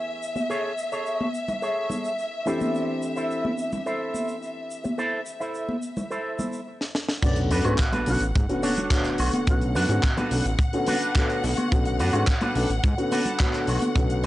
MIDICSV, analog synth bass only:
0, 0, Header, 1, 2, 480
1, 0, Start_track
1, 0, Tempo, 560748
1, 428, Time_signature, 4, 2, 24, 8
1, 12210, End_track
2, 0, Start_track
2, 0, Title_t, "Analog synth bass"
2, 0, Program_c, 0, 38
2, 6185, Note_on_c, 0, 35, 94
2, 6427, Note_on_c, 0, 42, 102
2, 6440, Note_off_c, 0, 35, 0
2, 6522, Note_off_c, 0, 42, 0
2, 6548, Note_on_c, 0, 44, 104
2, 6642, Note_off_c, 0, 44, 0
2, 6908, Note_on_c, 0, 35, 88
2, 7003, Note_off_c, 0, 35, 0
2, 7027, Note_on_c, 0, 33, 80
2, 7122, Note_off_c, 0, 33, 0
2, 7151, Note_on_c, 0, 44, 99
2, 7244, Note_off_c, 0, 44, 0
2, 7869, Note_on_c, 0, 35, 93
2, 7963, Note_off_c, 0, 35, 0
2, 8110, Note_on_c, 0, 35, 99
2, 8347, Note_on_c, 0, 42, 104
2, 8360, Note_off_c, 0, 35, 0
2, 8442, Note_off_c, 0, 42, 0
2, 8466, Note_on_c, 0, 44, 102
2, 8561, Note_off_c, 0, 44, 0
2, 8827, Note_on_c, 0, 35, 86
2, 8922, Note_off_c, 0, 35, 0
2, 8947, Note_on_c, 0, 33, 82
2, 9042, Note_off_c, 0, 33, 0
2, 9789, Note_on_c, 0, 35, 108
2, 9883, Note_off_c, 0, 35, 0
2, 10032, Note_on_c, 0, 35, 97
2, 10268, Note_on_c, 0, 42, 107
2, 10281, Note_off_c, 0, 35, 0
2, 10363, Note_off_c, 0, 42, 0
2, 10388, Note_on_c, 0, 44, 106
2, 10482, Note_off_c, 0, 44, 0
2, 10746, Note_on_c, 0, 35, 88
2, 10842, Note_off_c, 0, 35, 0
2, 10869, Note_on_c, 0, 33, 82
2, 10963, Note_off_c, 0, 33, 0
2, 10988, Note_on_c, 0, 44, 103
2, 11083, Note_off_c, 0, 44, 0
2, 11708, Note_on_c, 0, 35, 95
2, 11803, Note_off_c, 0, 35, 0
2, 11946, Note_on_c, 0, 35, 96
2, 12202, Note_off_c, 0, 35, 0
2, 12210, End_track
0, 0, End_of_file